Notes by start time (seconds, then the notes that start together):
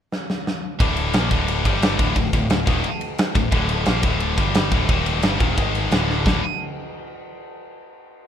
0.12 snare
0.30 snare
0.47 snare
0.80 D1 D2 A2 D3, kick, ride
0.97 ride
1.13 A#1 A#2 F3 A#3, snare, ride
1.31 D1 D2 A2 D3, kick, ride
1.48 ride
1.65 G1 G2 D3 G3, kick, ride
1.82 snare, ride
1.99 D1 D2 A2 D3, kick, ride
2.16 D1 D2 A2, kick, ride
2.33 D1 D2 A2, kick, ride
2.50 D1 D2 A2, snare, ride
2.66 D#1 D#2 A#2 D#3, kick, ride
2.84 ride
3.01 ride
3.18 snare, ride
3.35 D1 D2 A2, kick, ride
3.52 D1 D2 A2 D3, kick, ride
3.69 ride
3.86 A#1 A#2 F3 A#3, snare, ride
4.03 D1 D2 A2 D3, kick, ride
4.20 ride
4.38 G1 G2 D3 G3, kick, ride
4.55 snare, ride
4.72 D1 D2 A2 D3, kick, ride
4.89 D#1 D#2 A#2 D#3, kick, ride
5.06 ride
5.22 G1 G2 D3 G3, snare, ride
5.39 D#1 D#2 A#2 D#3, kick, ride
5.58 G#1 G#2 D#3 G#3, kick, ride
5.75 ride
5.92 D1 D2 A2 D3, snare, ride
6.10 snare
6.25 D1 D2 A2 D3, kick, snare